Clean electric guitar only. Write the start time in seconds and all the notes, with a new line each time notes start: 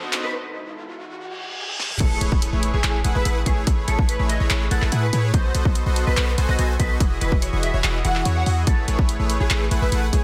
0.24 B4
2.00 A4
2.74 G#4
3.15 B4
3.46 G#4
3.88 A4
4.09 B4
4.29 D#5
4.71 A4
5.03 B4
5.34 C5
6.07 B4
6.48 D#5
6.79 B4
7.21 B4
7.42 C#5
7.63 E5
8.05 F#5
8.36 F#5
8.67 A4
9.40 G#4
9.82 B4
10.13 G#4